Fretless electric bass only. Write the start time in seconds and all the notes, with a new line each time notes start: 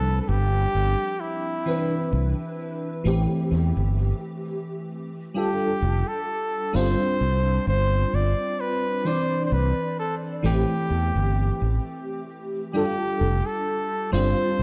Already playing: C2
0.29 G1
0.75 G1
2.13 C2
3.05 A1
3.51 E2
3.77 G1
5.82 F1
6.75 G1
7.21 C2
7.67 G1
8.13 G1
9.52 C2
10.44 A1
10.90 E2
11.15 G1
11.62 A1
13.21 F1
14.13 G1
14.59 C2